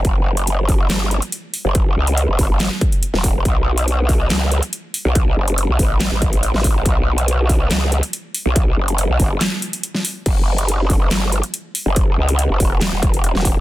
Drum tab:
CC |----------------|----------------|----------------|----------------|
HH |x--xx-o-x-xxx-o-|x--xx-o-x-xxx-o-|x--xx-o-x-xxx-o-|x--xx-o-x-xxx-o-|
CP |--------x-------|--------x-------|--------x-------|--------x-------|
SD |--------o-------|--------o----o--|--------o-------|--------o----o--|
BD |o-----o---------|o-----o---o---o-|o-----o---------|o-----o---o---o-|

CC |----------------|----------------|x---------------|----------------|
HH |x--xx-o-x-xxx-o-|x--xx-o-x-xxx-o-|x--xx-o-x-xxx-o-|x--xx-o-x-xxx-o-|
CP |--------x-------|--------x-------|--------x-------|--------x-------|
SD |--------o-------|--------o----o--|--------o-------|--------o----o--|
BD |o-----o---------|o-----o---------|o-----o---------|o-----o---o---o-|